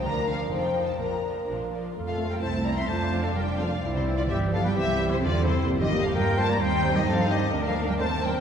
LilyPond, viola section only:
\new Staff \with { instrumentName = "Viola section" } { \time 2/4 \key bes \major \tempo 4 = 128 << { d'8 d'8 ees'8 ees'8 | d'8 d'8 d'8 d'8 | \key f \major f'4 e'4 | f'4 f'4 |
e'4 g'4 | g'4 a'4 | \key bes \major g'4 f'4 | ees'4 ees'4 |
bes'4 bes'4 | } \\ { f8 f8 f8 f8 | f8 f8 f8 f8 | a4 c'4 | d'2 |
c'4 b4 | c'4 c'4 | bes4 bes4 | c'4 c'4 |
d'4 c'4 | } >> }